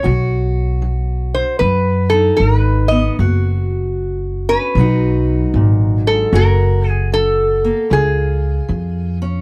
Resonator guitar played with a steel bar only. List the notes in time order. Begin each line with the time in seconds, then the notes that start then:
1.34 C5
1.59 B4
2.10 A4
2.37 A#4
2.58 B4
2.88 D#5
4.49 B4
6.07 A4
6.35 A#4
6.89 G#4
7.14 A4
7.93 G#4